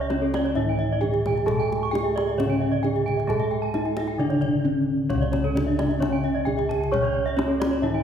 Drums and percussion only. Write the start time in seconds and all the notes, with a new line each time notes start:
0.10 kendang high
0.34 kendang high
0.46 kendang slap
1.03 kendang low
1.14 kendang slap
1.26 kendang high, kendang low
1.37 kendang slap
1.48 kendang low
1.61 kendang slap
1.72 kendang high
1.85 kendang slap
1.95 kendang high
2.18 kendang high
2.29 kendang slap
2.40 kendang high
2.84 kendang low
2.96 kendang slap
3.08 kendang low
3.20 kendang slap
3.30 kendang low
3.40 kendang slap
3.63 kendang slap
3.74 kendang high
3.85 kendang slap
3.97 kendang high
4.07 kendang slap
4.30 kendang slap
4.42 kendang low
5.10 kendang low
5.23 kendang slap
5.33 kendang high
5.45 kendang slap
5.57 kendang high
5.79 kendang high
5.91 kendang slap
6.02 kendang high
6.46 kendang low
6.59 kendang slap
6.71 kendang low
6.83 kendang slap
6.94 kendang low
7.05 kendang slap
7.27 kendang slap
7.39 kendang high
7.62 kendang high
7.73 kendang slap